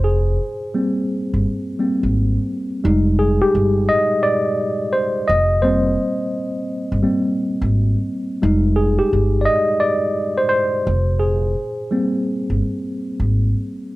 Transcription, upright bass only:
X:1
M:4/4
L:1/16
Q:"Swing 16ths" 1/4=86
K:Ablyd
V:1 name="Upright bass" clef=bass
F,,,2 z4 z G,,, z3 A,,,2 z3 | F,,,3 z G,,,2 z8 F,,,2- | F,,,2 z4 z G,,, z3 A,,,2 z3 | F,,,3 z G,,,2 z8 F,,,2- |
F,,,2 z4 z G,,, z3 A,,,2 z3 |]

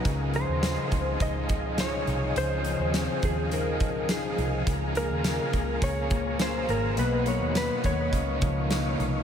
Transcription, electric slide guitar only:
X:1
M:4/4
L:1/16
Q:1/4=104
K:Db
V:1 name="Electric slide guitar"
z2 c6 e4 d4 | c6 A2 B4 A3 z | z2 B6 d4 c2 B2 | _c2 d2 c2 d6 z4 |]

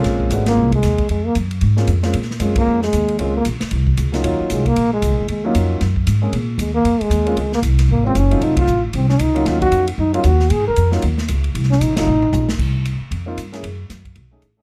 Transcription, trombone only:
X:1
M:4/4
L:1/16
Q:"Swing" 1/4=230
K:Bbm
V:1 name="Trombone"
z4 A,2 B,4 A,6 | A,2 B,2 z12 | z4 A,2 B,4 A,6 | A,2 B,2 z12 |
z4 A,2 B,4 A,6 | A,2 B,2 z12 | z4 A,2 B,4 A,6 | A,2 B,2 z4 B,2 C2 D4 |
E2 F4 z2 C2 D2 E4 | F2 G4 z2 E2 F2 G4 | A2 B4 z8 z2 | z2 D2 E2 E8- E z |
z16 | z16 |]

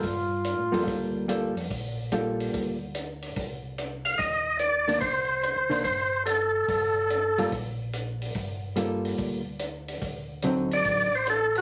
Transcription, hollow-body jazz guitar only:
X:1
M:4/4
L:1/8
Q:"Swing" 1/4=144
K:Gm
V:1 name="Hollow-body jazz guitar"
z3 [G,B,FA]3 [G,B,FA] z | z2 [G,B,FA]3 z3 | z6 z [E,B,D] | z3 [E,B,D] z4 |
z3 [G,B,FA] z4 | z2 [G,B,FA]3 z3 | z2 [D,^F,CE]3 z3 |]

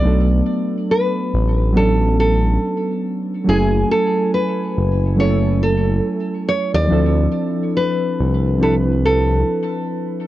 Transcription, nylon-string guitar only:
X:1
M:4/4
L:1/16
Q:"Swing 16ths" 1/4=70
K:Bdor
V:1 name="Nylon-string guitar"
d4 B4 A2 A4 z2 | G2 A2 B4 c2 A4 c d- | d4 B4 A2 A4 z2 |]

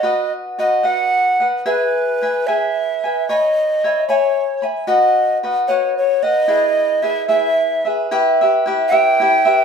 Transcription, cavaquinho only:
X:1
M:6/8
L:1/8
Q:3/8=75
K:E
V:1 name="Cavaquinho"
[FBdf]2 [FBdf] [FBdf]2 [Bdf] | [GBeg]2 [GBeg] [GBeg]2 [Beg] | [cgb]2 [cegb] [cegb]2 [egb] | [FBdf]2 [FBdf] [FBdf]2 [Bdf] |
[EGB]2 [EGBe] [EGBe]2 [GBe] | [K:Em] [EGBe] [GBe] [EGBe] [EGBe] [EGBe] [GBe] |]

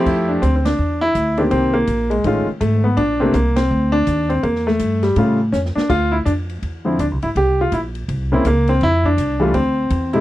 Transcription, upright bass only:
X:1
M:4/4
L:1/8
Q:"Swing" 1/4=164
K:F
V:1 name="Upright bass" clef=bass
F,,2 D,,2 E,,2 D,,2 | C,,2 B,,,2 A,,, z ^G,,,2 | B,,,2 C,,2 D,,2 _E,,2 | E,,2 G,,2 A,,2 F,, z |
D,,2 F,,2 E,,2 (3D,, C,, A,,, | C,,2 B,,,2 C,,2 _D,,2 | F,,2 C,,2 D,,2 E,,2 |]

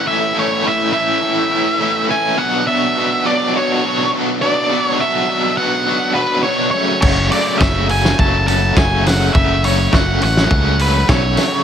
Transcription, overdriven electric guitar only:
X:1
M:4/4
L:1/8
Q:1/4=103
K:F#m
V:1 name="Overdriven electric guitar"
[A,,E,A,CE] [A,,E,A,CE] [A,,E,A,CE] [A,,E,A,CE] [A,,E,A,CE] [A,,E,A,CE] [A,,E,A,CE] [A,,E,A,CE] | [B,,F,B,DF] [B,,F,B,DF] [B,,F,B,DF] [B,,F,B,DF] [B,,F,B,DF] [B,,F,B,DF] [B,,F,B,DF] [B,,F,B,DF] | [B,,F,B,DF] [B,,F,B,DF] [B,,F,B,DF] [B,,F,B,DF] [B,,F,B,DF] [B,,F,B,DF] [B,,F,B,DF] [F,,C,F,A,CF] | [F,,C,F,A,CF] [F,,C,F,A,CF] [F,,C,F,A,CF] [F,,C,F,A,CF] [F,,C,F,A,CF] [F,,C,F,A,CF] [F,,C,F,A,CF] [F,,C,F,A,CF] |
[F,,C,F,A,CF] [F,,C,F,A,CF] [F,,C,F,A,CF] [F,,C,F,A,CF] [F,,C,F,A,CF] [F,,C,F,A,CF] [F,,C,F,A,CF] [F,,C,F,A,CF] |]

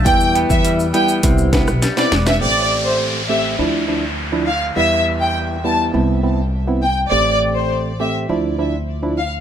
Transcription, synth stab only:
X:1
M:4/4
L:1/16
Q:1/4=102
K:Am
V:1 name="Synth stab"
[G,B,E]6 [G,B,E]2 [B,CE]2 [B,CE] z2 [B,CE] z2 | [A,CG]6 [A,CG]2 [F,DE]2 [F,DE] z2 [F,DE] z2 | [G,B,E]6 [G,B,E]2 [B,CE]2 [B,CE] z2 [B,CE] z2 | [A,CG]6 [A,CG]2 [F,DE]2 [F,DE] z2 [F,DE] z2 |]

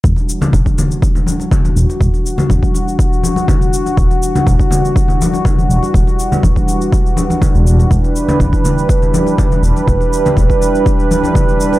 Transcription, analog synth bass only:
X:1
M:4/4
L:1/16
Q:1/4=122
K:Em
V:1 name="Analog synth bass" clef=bass
E,,, z3 E,,, z8 z E,,, z | E,,, z3 E,,, z8 z3 | E,,, z3 E,,, z8 z E,,, z | E,,, z3 E,,, z8 E,,,2 z |
E,,, z3 E,,, z8 z E,,, z | E,,, z3 E,,, z8 z3 |]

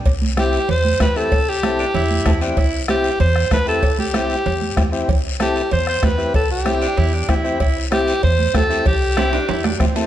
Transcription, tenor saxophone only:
X:1
M:4/4
L:1/16
Q:1/4=191
K:C
V:1 name="Tenor saxophone"
z16 | z6 D2 E6 D2 | E3 z12 z | z16 |
z16 | z6 D2 E2 D2 E4 | E3 z12 z | z4 E2 D2 E2 D2 C4 |]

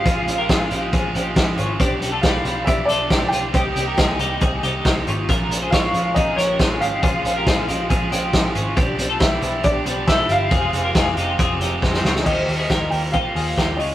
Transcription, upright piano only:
X:1
M:4/4
L:1/8
Q:1/4=138
K:Cphr
V:1 name="Upright piano"
f6- f z | z2 f2 =e =d2 g- | g6- g z | z2 f2 e d2 f- |
f6- f z | z2 =e2 =d2 e f- | f6 z2 | e3 g f3 e |]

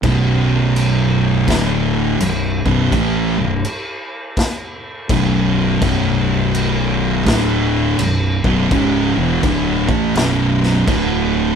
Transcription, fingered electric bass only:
X:1
M:4/4
L:1/8
Q:"Swing" 1/4=83
K:Bm
V:1 name="Fingered electric bass" clef=bass
B,,,,4 D,,,2 B,,,, B,,,, | A,,, B,,,, z4 B,,,,2 | B,,,,4 D,,,2 B,,,, B,,,, | C,,, E,,, D,,, A,,, B,,,,2 D,,,2 |]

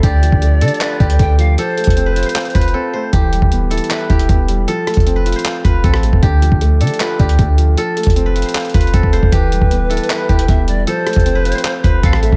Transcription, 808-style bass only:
X:1
M:4/4
L:1/16
Q:1/4=155
K:Flyd
V:1 name="808-style bass" clef=bass
D,,3 D,,3 D, z3 D,,2 D,,4 | z3 F,,,4 z3 F,,,2 z4 | E,,,3 E,,,2 D,,,2 z3 E,,,2 E,,,4 | z3 F,,,4 z3 F,,,2 A,,,3 F,,, |
D,,3 D,,3 D, z3 D,,2 D,,4 | z3 F,,,4 z3 F,,,2 F,,,3 F,,, | E,,,3 E,,,2 D,,,2 z3 E,,,2 E,,,4 | z3 F,,,4 z3 F,,,2 A,,,3 F,,, |]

